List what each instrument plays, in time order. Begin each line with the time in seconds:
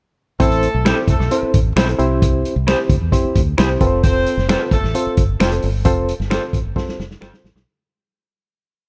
0.40 fingered electric bass A1, horn section A3 A4, reed electric piano C4 E4 A4 C5, kick, closed hi-hat
0.52 closed hi-hat
0.63 closed hi-hat
0.74 fingered electric bass B1
0.85 horn section G3 G4, reed electric piano C4 E4 A4 C5, clean electric guitar E4 A4 C5, finger snap, snare, closed hi-hat
1.08 fingered electric bass C2, horn section A3 A4, kick, closed hi-hat
1.20 fingered electric bass B1, snare
1.31 reed electric piano C4 E4 A4 C5, closed hi-hat
1.43 muted fingered electric bass stroke
1.54 fingered electric bass A1, kick, closed hi-hat
1.76 fingered electric bass B1, reed electric piano C4 E4 A4 C5, clean electric guitar E4 A4 C5, finger snap, snare, closed hi-hat
1.89 closed hi-hat
1.99 fingered electric bass C2, reed electric piano C4 E4 G4 C5, closed hi-hat
2.22 kick, closed hi-hat
2.45 closed hi-hat
2.56 fingered electric bass C2
2.67 reed electric piano C4 E4 G4 C5, clean electric guitar E4 G4 C5, finger snap, snare, closed hi-hat
2.89 fingered electric bass D2, kick, closed hi-hat
3.01 fingered electric bass E2
3.12 reed electric piano C4 E4 G4 C5, kick, closed hi-hat
3.25 muted fingered electric bass stroke
3.35 fingered electric bass D2, kick, closed hi-hat
3.58 fingered electric bass C2, reed electric piano C4 E4 G4 C5, clean electric guitar E4 G4 C5, finger snap, snare, closed hi-hat
3.81 fingered electric bass F1, reed electric piano C4 F4 A4 B4, kick, closed hi-hat
3.87 reed electric piano C5
4.03 horn section C4 C5, kick, closed hi-hat
4.26 closed hi-hat
4.37 fingered electric bass F1, snare
4.49 horn section B3 B4, reed electric piano C4 F4 A4 C5, clean electric guitar F4 A4 C5, finger snap, snare, closed hi-hat
4.71 fingered electric bass G1, horn section A3 A4, kick, closed hi-hat
4.84 fingered electric bass A1, snare
4.95 reed electric piano C4 F4 A4 C5, closed hi-hat
5.07 muted fingered electric bass stroke
5.17 fingered electric bass G1, kick, closed hi-hat
5.40 fingered electric bass F1, reed electric piano C4 F4 A4 C5, clean electric guitar F4 A4 C5, finger snap, snare, closed hi-hat
5.52 closed hi-hat
5.62 fingered electric bass G1, open hi-hat
5.85 fingered electric bass F1, reed electric piano C4 F4 A4 C5, kick, closed hi-hat
6.09 closed hi-hat
6.20 fingered electric bass G1, snare
6.30 reed electric piano C4 F4 A4 C5, clean electric guitar F4 A4 C5, finger snap, snare, closed hi-hat
6.53 fingered electric bass A1, kick, closed hi-hat
6.65 fingered electric bass G1
6.76 reed electric piano C4 F4 A4 C5, kick, snare
6.88 muted fingered electric bass stroke, snare
6.99 fingered electric bass F1, snare
7.11 snare
7.21 fingered electric bass G1, reed electric piano C4 F4 A4 C5, clean electric guitar F4 A4 C5, finger snap, snare
7.34 snare
7.44 fingered electric bass A1, snare
7.55 fingered electric bass B1, snare